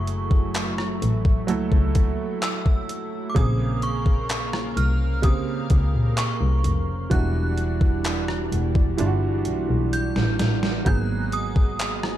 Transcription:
Already playing: F#1 F#3 A3 E4 G#4 C#6
0.07 closed hi-hat
0.31 kick
0.54 clap, closed hi-hat
0.78 cross-stick
1.02 A1, closed hi-hat
1.25 kick
1.47 C#2 F#3 A3 E4 A4, closed hi-hat
1.72 C#2, kick
1.95 kick, closed hi-hat
2.42 E6, clap, closed hi-hat
2.66 kick
2.89 closed hi-hat
3.30 D6
3.35 A#1 C#3 A#3 C4 G#4 A#4 F5 D#6, kick, closed hi-hat
3.82 C#6, closed hi-hat
4.06 kick
4.29 clap, closed hi-hat
4.53 cross-stick
4.77 C2 F6, closed hi-hat
5.22 C#3 A#3 C4 G4 A#4 D#6, kick, closed hi-hat
5.70 C#2, kick, closed hi-hat
5.94 A#2
6.17 C#6, clap, closed hi-hat
6.41 C2
6.64 F1, closed hi-hat
7.10 E1 E3 F#3 G3 D4 F#4 F#6, kick, closed hi-hat
7.17 G3
7.58 closed hi-hat
7.81 kick
8.04 clap, closed hi-hat
8.28 cross-stick
8.52 E1, closed hi-hat
8.75 kick
8.98 G1 E3 G3 D4 F4, closed hi-hat
9.07 F#4
9.45 B1, closed hi-hat
9.69 B1
9.93 G6, closed hi-hat
10.16 A1, snare
10.39 A1, snare, closed hi-hat
10.63 snare
10.85 G#1 F#3 G#3 A#3 B3 F#4 G#4 D#5 G6, kick, closed hi-hat
10.98 F#6
11.32 D#6, closed hi-hat
11.56 kick
11.79 clap, closed hi-hat
12.03 cross-stick

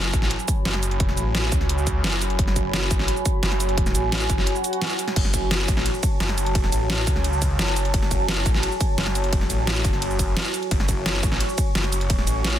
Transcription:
Already playing: F#1 F#4 C#5 G#5 B5
0.13 A1, kick, closed hi-hat, cabasa
0.22 snare
0.31 closed hi-hat
0.39 cabasa
0.48 kick, closed hi-hat, cabasa
0.65 F#1, snare, closed hi-hat
0.74 snare, closed hi-hat
0.83 closed hi-hat, cabasa
0.91 closed hi-hat
1.00 kick, closed hi-hat
1.09 snare
1.17 A1, closed hi-hat, cabasa
1.35 snare, closed hi-hat
1.52 C#2, kick, closed hi-hat, cabasa
1.61 snare
1.69 closed hi-hat
1.78 cabasa
1.87 kick, closed hi-hat, cabasa
2.04 F#1, snare, closed hi-hat
2.13 closed hi-hat
2.21 closed hi-hat, cabasa
2.30 closed hi-hat
2.39 F#1, kick, closed hi-hat
2.47 snare
2.56 kick, closed hi-hat, cabasa
2.73 snare, closed hi-hat
2.91 A1, kick, closed hi-hat, cabasa
2.99 snare
3.08 closed hi-hat
3.17 cabasa
3.25 kick, closed hi-hat, cabasa
3.43 F#1, snare, closed hi-hat
3.52 snare, closed hi-hat
3.60 closed hi-hat, cabasa
3.69 closed hi-hat
3.78 kick, closed hi-hat
3.86 snare, cabasa
3.95 A1, closed hi-hat, cabasa
4.12 snare, closed hi-hat
4.21 cabasa
4.30 F#1, kick, closed hi-hat, cabasa
4.38 snare
4.47 closed hi-hat, swell
4.56 cabasa
4.64 closed hi-hat, cabasa
4.73 closed hi-hat
4.82 snare, closed hi-hat
4.90 closed hi-hat, cabasa
4.99 closed hi-hat, cabasa
5.08 snare, closed hi-hat
5.16 F#1 A5, kick, closed hi-hat, crash, ride
5.25 snare
5.34 kick, closed hi-hat, ride, cabasa
5.51 snare, closed hi-hat, ride
5.68 A1, kick, closed hi-hat, ride, cabasa
5.77 snare
5.86 closed hi-hat, ride
5.94 cabasa
6.03 kick, closed hi-hat, ride, cabasa
6.20 F#1, snare, closed hi-hat, ride
6.29 snare, closed hi-hat
6.38 closed hi-hat, ride, cabasa
6.46 closed hi-hat
6.55 kick, closed hi-hat, ride
6.64 snare
6.72 A1, closed hi-hat, ride, cabasa
6.90 snare, closed hi-hat, ride
7.07 C#2, kick, closed hi-hat, ride, cabasa
7.16 snare
7.24 closed hi-hat, ride
7.33 cabasa
7.42 kick, closed hi-hat, ride, cabasa
7.59 F#1, snare, closed hi-hat, ride
7.68 closed hi-hat
7.76 closed hi-hat, ride, cabasa
7.85 closed hi-hat
7.94 F#1, kick, closed hi-hat, ride
8.02 snare
8.11 kick, closed hi-hat, ride, cabasa
8.28 snare, closed hi-hat, ride
8.46 A1, kick, closed hi-hat, ride, cabasa
8.54 snare
8.63 closed hi-hat, ride
8.72 cabasa
8.81 kick, closed hi-hat, ride, cabasa
8.98 F#1, snare, closed hi-hat, ride
9.07 snare, closed hi-hat
9.15 closed hi-hat, ride, cabasa
9.24 closed hi-hat
9.33 kick, closed hi-hat, ride
9.41 snare
9.50 A1, closed hi-hat, ride, cabasa
9.67 snare, closed hi-hat, ride
9.76 cabasa
9.85 F#1, kick, closed hi-hat, ride, cabasa
9.93 snare
10.02 closed hi-hat, ride
10.11 cabasa
10.19 kick, closed hi-hat, ride, cabasa
10.37 snare, closed hi-hat, ride
10.45 closed hi-hat, cabasa
10.54 closed hi-hat, ride, cabasa
10.63 closed hi-hat
10.71 F#1 C#6, kick, closed hi-hat, ride
10.80 snare
10.89 kick, closed hi-hat, ride, cabasa
11.06 snare, closed hi-hat, ride
11.23 A1, kick, closed hi-hat, ride, cabasa
11.32 snare
11.40 closed hi-hat, ride
11.49 cabasa
11.58 kick, closed hi-hat, ride, cabasa
11.75 F#1, snare, closed hi-hat, ride
11.84 snare, closed hi-hat
11.92 closed hi-hat, ride, cabasa
12.01 closed hi-hat
12.10 kick, closed hi-hat, ride
12.19 snare
12.27 A1, closed hi-hat, ride, cabasa
12.45 snare, closed hi-hat, ride

